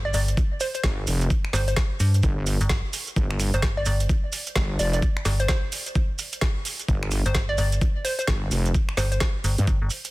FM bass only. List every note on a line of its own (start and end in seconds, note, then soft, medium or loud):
0.00 0.13 G1 loud
0.14 0.36 G1 loud
1.54 1.75 G1 loud
2.00 2.22 G2 medium
2.61 2.82 G1 loud
3.54 3.85 G1 medium
3.86 4.08 G1 loud
5.26 5.48 G1 loud
7.26 7.57 G1 medium
7.58 7.80 G1 loud
8.98 9.20 G1 loud
9.44 9.56 G1 loud
9.68 9.79 G1 loud
9.82 9.89 G1 loud